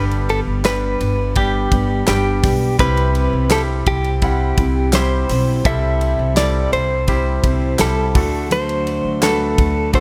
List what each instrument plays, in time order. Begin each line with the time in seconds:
Already playing: upright bass G1, steel-string acoustic guitar G2 D3 G3 B3 D4 G4, grand piano G2 G3 B3 D4 G4
0.11 ride
0.29 clean electric guitar A4, ride
0.47 upright bass G1
0.64 steel-string acoustic guitar G3 B3 D4 G4, grand piano G3 B3 D4 G4, clean electric guitar B4, snare, clap, ride
1.00 upright bass G1, ride
1.35 grand piano G3 B3 D4 G4, clean electric guitar G4, kick, ride
1.71 upright bass G1, steel-string acoustic guitar G3 B3 D4 G4, kick, ride
2.07 upright bass G1, steel-string acoustic guitar G3 B3 D4 G4, grand piano G3 B3 D4 G4, clean electric guitar G4, snare, clap, ride
2.42 upright bass B1, steel-string acoustic guitar G3 B3 D4 G4, kick, snare, open hi-hat, ride
2.78 upright bass C2, steel-string acoustic guitar C3 G3 C4 E4 G4, grand piano C3 G3 C4 E4 G4, clean electric guitar B4, kick, hi-hat pedal, ride
2.97 ride
3.15 ride
3.33 upright bass C2
3.50 steel-string acoustic guitar G3 C4 E4 G4, grand piano G3 C4 E4 G4, clean electric guitar A4, snare, clap, ride
3.86 upright bass C2, clean electric guitar G4, kick, ride
4.04 ride
4.22 grand piano G3 C4 E4 F#5, kick, ride
4.57 upright bass C2, steel-string acoustic guitar C4 E4 G4, kick, ride
4.93 steel-string acoustic guitar G3 C4 E4 G4, grand piano G3 C4 E4 G4, clean electric guitar C5, snare, clap, ride
5.29 upright bass B1, steel-string acoustic guitar C4 E4 G4, snare, open hi-hat, ride
5.64 upright bass C2, steel-string acoustic guitar C3 G3 C4 E4 G4, grand piano C3 G3 C4 E4 A4, clean electric guitar E5, kick, hi-hat pedal, ride
6.01 ride
6.19 upright bass C2
6.36 steel-string acoustic guitar G3 C4 E4 G4, grand piano G3 C4 E4 A4, clean electric guitar D5, snare, clap, ride
6.72 upright bass C2, clean electric guitar C5, ride
7.07 grand piano G3 C4 E4 G4, kick, ride
7.43 upright bass C2, steel-string acoustic guitar C4 E4 G4, kick, ride
7.79 upright bass C2, steel-string acoustic guitar G3 C4 E4 G4, grand piano G3 C4 E4 G4, clean electric guitar A4, snare, clap, ride
8.14 upright bass D2, grand piano D3 A3 D4 F#4 A4, steel-string acoustic guitar A3 D4 F#4, kick, open hi-hat, ride
8.50 steel-string acoustic guitar D3 F#3 A3 D4 F#4, clean electric guitar C5, hi-hat pedal, ride
8.69 ride
8.87 ride
9.05 upright bass D2
9.21 steel-string acoustic guitar F#3 A3 D4 F#4, grand piano A3 D4 F#4 B4, clean electric guitar A4, snare, clap, ride
9.58 upright bass D2, kick, ride
9.93 grand piano A3 D4 F#4 A4, clean electric guitar C5, kick, ride